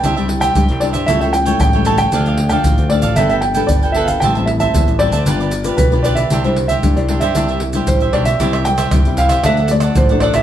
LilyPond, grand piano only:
\new Staff \with { instrumentName = "Grand piano" } { \time 4/4 \key c \major \tempo 4 = 115 g''8. g''8. d''8 e''16 e''16 g''8 g''8 a''16 g''16~ | g''8. g''8. d''8 e''16 e''16 g''8 d''8 e''16 f''16 | g''8 e''16 e''8. d''4. b'8 d''16 e''16~ | e''16 c''8 e''8 d''8 e''16 e''4 c''8 d''16 e''16~ |
e''8 g''4 f''8 e''8 d''8 c''8 d''16 e''16 | }